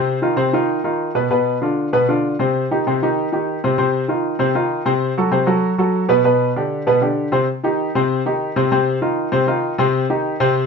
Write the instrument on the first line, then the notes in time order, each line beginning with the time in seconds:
grand piano
Already playing: C3 C4 C5
0.22 D#3 D#4 F4
0.36 C3 C4 C5
0.53 D#3 D#4 F4
0.84 D#3 D#4 F4
1.15 B2 B3 B4
1.31 B2 B3 B4
1.62 D3 D4 F4
1.93 B2 B3 B4
2.09 D3 D4 F4
2.39 C3 C4 C5
2.71 D#3 D#4 G4
2.87 C3 C4 C5
3.03 D#3 D#4 G4
3.32 D#3 D#4 G4
3.64 C3 C4 C5
3.78 C3 C4 C5
4.08 D#3 D#4 F4
4.39 C3 C4 C5
4.55 D#3 D#4 F4
4.85 C3 C4 C5
5.18 F#3 F#4 A4
5.31 C3 C4 C5
5.47 F#3 F#4 A4
5.78 F#3 F#4 A4
6.09 B2 B3 B4
6.24 B2 B3 B4
6.56 D3 D4 G4
6.87 B2 B3 B4
7.01 D3 D4 G4
7.32 C3 C4 C5
7.64 D#3 D#4 G4
7.95 C3 C4 C5
8.26 D#3 D#4 G4
8.56 C3 C4 C5
8.72 C3 C4 C5
9.02 D#3 D#4 F4
9.32 C3 C4 C5
9.47 D#3 D#4 F4
9.78 C3 C4 C5
10.10 D#3 D#4 G4
10.40 C3 C4 C5